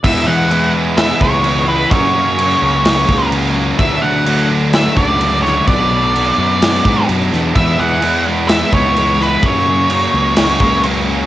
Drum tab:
CC |x-x-x-x-|x-x-x-x-|x-x-x-x-|x-x-x-x-|
SD |----o---|----o---|----o--o|----o--o|
BD |o----o--|o----o--|o----o--|o----o--|

CC |x-x-x-x-|x-x-x-x-|
SD |----o--o|----o---|
BD |o----o--|o----o--|